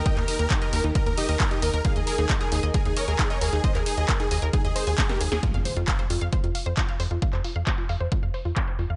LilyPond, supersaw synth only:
\new Staff \with { instrumentName = "Supersaw synth" } { \time 4/4 \key f \minor \tempo 4 = 134 <ees'' g''>16 bes'16 bes'16 bes'16 r16 bes'16 bes'16 r16 bes'16 bes'16 <g' ees''>16 bes'16 bes'16 <g' ees''>16 bes'16 bes'16 | <aes' f''>16 aes'16 aes'16 aes'16 r16 aes'16 aes'16 r16 aes'16 aes'16 <bes' des''>16 aes'16 aes'16 <bes' des''>16 aes'16 aes'16 | <c'' ees''>16 aes'16 aes'16 aes'16 r16 aes'16 aes'16 r16 aes'16 aes'16 <aes' c''>16 aes'16 aes'16 <g' bes'>16 aes'16 aes'16 | r1 |
r1 | }